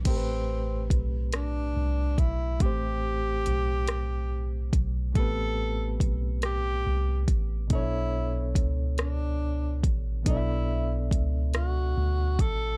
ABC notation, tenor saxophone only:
X:1
M:6/8
L:1/8
Q:3/8=47
K:Am
V:1 name="Tenor saxophone"
C2 z D2 E | G4- G z | A2 z G2 z | E2 z D2 z |
E2 z ^F2 A |]